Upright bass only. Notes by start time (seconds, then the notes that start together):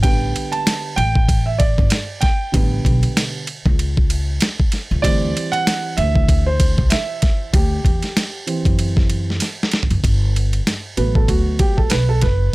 0.04 A1
0.97 A1
1.78 G1
2.54 A1
2.85 B1
3.66 C#2
4.91 C#2
5.04 D2
5.98 D2
6.78 C2
7.54 D2
7.85 E2
8.66 F#2
9.91 F#1
10.04 G1
10.97 A1
11.29 D2
11.91 B1
12.23 F#1